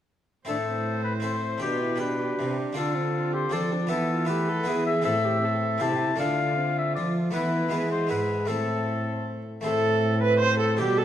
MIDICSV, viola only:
0, 0, Header, 1, 2, 480
1, 0, Start_track
1, 0, Key_signature, 0, "minor"
1, 0, Tempo, 381922
1, 611, Time_signature, 3, 2, 24, 8
1, 13884, End_track
2, 0, Start_track
2, 0, Title_t, "Viola"
2, 0, Program_c, 0, 41
2, 604, Note_on_c, 0, 72, 50
2, 1996, Note_off_c, 0, 72, 0
2, 2052, Note_on_c, 0, 71, 52
2, 2526, Note_on_c, 0, 67, 61
2, 2545, Note_off_c, 0, 71, 0
2, 2757, Note_off_c, 0, 67, 0
2, 2764, Note_on_c, 0, 67, 61
2, 3478, Note_on_c, 0, 65, 51
2, 3497, Note_off_c, 0, 67, 0
2, 3957, Note_off_c, 0, 65, 0
2, 3963, Note_on_c, 0, 65, 62
2, 4189, Note_on_c, 0, 67, 68
2, 4208, Note_off_c, 0, 65, 0
2, 4431, Note_on_c, 0, 69, 62
2, 4450, Note_off_c, 0, 67, 0
2, 4677, Note_on_c, 0, 62, 64
2, 4696, Note_off_c, 0, 69, 0
2, 4931, Note_on_c, 0, 64, 55
2, 4950, Note_off_c, 0, 62, 0
2, 5161, Note_off_c, 0, 64, 0
2, 5177, Note_on_c, 0, 65, 61
2, 5389, Note_on_c, 0, 67, 61
2, 5408, Note_off_c, 0, 65, 0
2, 5634, Note_on_c, 0, 69, 69
2, 5653, Note_off_c, 0, 67, 0
2, 5871, Note_on_c, 0, 68, 69
2, 5890, Note_off_c, 0, 69, 0
2, 6110, Note_off_c, 0, 68, 0
2, 6127, Note_on_c, 0, 68, 63
2, 6357, Note_on_c, 0, 69, 63
2, 6376, Note_off_c, 0, 68, 0
2, 6588, Note_on_c, 0, 67, 63
2, 6607, Note_off_c, 0, 69, 0
2, 6839, Note_on_c, 0, 69, 60
2, 6858, Note_off_c, 0, 67, 0
2, 7310, Note_on_c, 0, 67, 69
2, 7328, Note_off_c, 0, 69, 0
2, 7775, Note_off_c, 0, 67, 0
2, 7782, Note_on_c, 0, 65, 55
2, 9191, Note_off_c, 0, 65, 0
2, 9218, Note_on_c, 0, 64, 54
2, 9697, Note_on_c, 0, 68, 61
2, 9716, Note_off_c, 0, 64, 0
2, 10661, Note_on_c, 0, 69, 48
2, 10680, Note_off_c, 0, 68, 0
2, 11880, Note_off_c, 0, 69, 0
2, 12108, Note_on_c, 0, 69, 84
2, 12787, Note_off_c, 0, 69, 0
2, 12844, Note_on_c, 0, 71, 94
2, 13056, Note_off_c, 0, 71, 0
2, 13064, Note_on_c, 0, 72, 102
2, 13306, Note_off_c, 0, 72, 0
2, 13314, Note_on_c, 0, 69, 79
2, 13554, Note_off_c, 0, 69, 0
2, 13565, Note_on_c, 0, 67, 87
2, 13795, Note_on_c, 0, 69, 93
2, 13814, Note_off_c, 0, 67, 0
2, 13884, Note_off_c, 0, 69, 0
2, 13884, End_track
0, 0, End_of_file